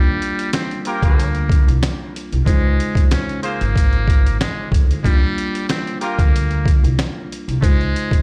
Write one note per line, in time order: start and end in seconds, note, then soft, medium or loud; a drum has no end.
0.00 0.15 D#2 loud
0.00 0.49 G3 loud
0.00 2.42 G3 medium
0.00 2.43 A#3 medium
0.00 2.43 D4 medium
0.00 2.44 F4 medium
0.22 closed hi-hat medium
0.39 closed hi-hat medium
0.53 0.82 C4 medium
0.53 snare loud
0.53 snare medium
0.53 closed hi-hat loud
0.71 closed hi-hat soft
0.85 1.79 A#3 medium
0.85 1.28 F4 loud
0.85 1.28 G4 loud
0.85 1.28 A#4 loud
0.85 closed hi-hat medium
1.02 1.56 D2 medium
1.02 kick loud
1.02 closed hi-hat medium
1.20 closed hi-hat medium
1.35 closed hi-hat soft
1.50 kick loud
1.50 closed hi-hat medium
1.68 1.80 C2 medium
1.68 closed hi-hat medium
1.83 snare loud
1.83 closed hi-hat loud
2.16 closed hi-hat medium
2.32 2.44 C2 medium
2.32 closed hi-hat medium
2.45 2.73 C#2 loud
2.45 5.00 C#3 medium
2.45 5.00 G#3 medium
2.45 3.07 G#3 loud
2.45 5.01 D#4 medium
2.45 5.01 C5 medium
2.45 kick loud
2.45 closed hi-hat medium
2.49 5.02 F4 medium
2.80 closed hi-hat medium
2.95 kick loud
2.95 closed hi-hat medium
3.11 3.41 C#4 medium
3.11 snare loud
3.11 snare medium
3.11 closed hi-hat loud
3.29 closed hi-hat soft
3.42 4.36 A#3 medium
3.42 3.63 F4 loud
3.42 3.63 G#4 medium
3.42 3.63 C5 loud
3.42 closed hi-hat medium
3.61 4.36 G#1 medium
3.61 closed hi-hat medium
3.76 kick loud
3.76 closed hi-hat medium
3.93 closed hi-hat soft
4.08 kick loud
4.08 closed hi-hat medium
4.27 closed hi-hat medium
4.40 4.69 G#3 medium
4.40 snare loud
4.40 snare medium
4.40 closed hi-hat medium
4.72 4.99 D2 loud
4.72 kick loud
4.72 closed hi-hat medium
4.91 closed hi-hat medium
5.03 5.31 D#2 loud
5.03 7.58 G3 medium
5.03 5.65 G3 loud
5.03 7.59 A#3 medium
5.03 7.59 D4 medium
5.03 7.60 F4 medium
5.03 kick loud
5.03 closed hi-hat medium
5.38 closed hi-hat medium
5.55 closed hi-hat medium
5.69 5.98 C4 medium
5.69 snare loud
5.69 closed hi-hat loud
5.87 closed hi-hat soft
6.00 6.94 A#3 medium
6.00 6.22 F4 loud
6.00 6.22 G4 loud
6.00 6.22 A#4 loud
6.00 closed hi-hat medium
6.19 6.72 D2 medium
6.19 kick loud
6.19 closed hi-hat medium
6.36 closed hi-hat medium
6.51 closed hi-hat soft
6.66 kick loud
6.66 closed hi-hat medium
6.84 6.96 C2 medium
6.84 closed hi-hat medium
6.99 snare loud
6.99 snare medium
6.99 closed hi-hat loud
7.32 closed hi-hat medium
7.48 7.60 C2 medium
7.48 closed hi-hat medium
7.61 7.89 C#2 loud
7.61 8.22 C#3 medium
7.61 8.22 G#3 medium
7.61 8.22 G#3 loud
7.61 8.22 D#4 medium
7.61 8.22 C5 medium
7.61 kick loud
7.61 closed hi-hat medium
7.65 8.22 F4 medium
7.81 closed hi-hat soft
7.96 closed hi-hat medium
8.11 kick loud
8.11 closed hi-hat medium